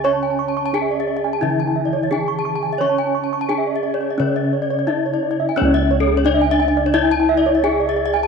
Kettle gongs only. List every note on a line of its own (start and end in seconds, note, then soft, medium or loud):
0.00 0.70 C#3 medium
0.05 2.07 C#5 medium
0.73 0.81 D4 soft
1.43 3.45 C#3 soft
2.12 2.20 D4 soft
2.80 4.83 C#5 medium
3.50 3.58 D4 soft
4.20 6.22 C#3 medium
4.88 4.96 D4 soft
5.56 7.59 C#4 medium
5.62 8.27 C#2 medium
6.26 6.34 D4 soft
7.63 7.71 D4 soft